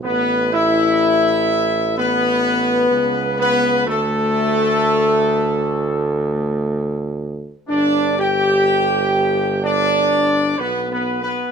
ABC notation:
X:1
M:4/4
L:1/8
Q:1/4=63
K:Amix
V:1 name="Trumpet section"
B e3 B3 B | A6- A z | d g3 d2 (3B B B |]
V:2 name="French horn section"
B, E3 B,3 B, | A,6- A, z | D G3 D2 (3B, B, B, |]
V:3 name="Trombone section"
B, E3 B,3 B, | A,6- A, z | D G3 D2 (3B, B, B, |]
V:4 name="Tuba" clef=bass
A,,,6 C,,2 | D,,8 | G,,,6 B,,,2 |]